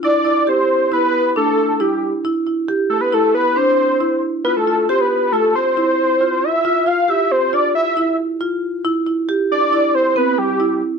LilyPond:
<<
  \new Staff \with { instrumentName = "Analog synth lead" } { \time 5/4 \key a \minor \tempo 4 = 136 d''4 c''4 b'4 a'4 g'8. r16 | r4. a'16 b'16 a'8 b'8 c''4. r8 | b'16 a'8. c''16 b'8. a'8 c''2 e''8~ | e''8 f''8 e''8 c''8 d''8 e''4 r4. |
r4. d''4 c''8 b'8 g'4 r8 | }
  \new Staff \with { instrumentName = "Marimba" } { \time 5/4 \key a \minor e'8 e'8 g'4 e'4 d'4 e'4 | e'8 e'8 g'4 e'4 d'4 e'4 | f'8 f'8 g'4 f'4 e'4 f'4 | f'8 f'8 g'4 f'4 e'4 f'4 |
e'8 e'8 g'4 e'4 c'4 e'4 | }
>>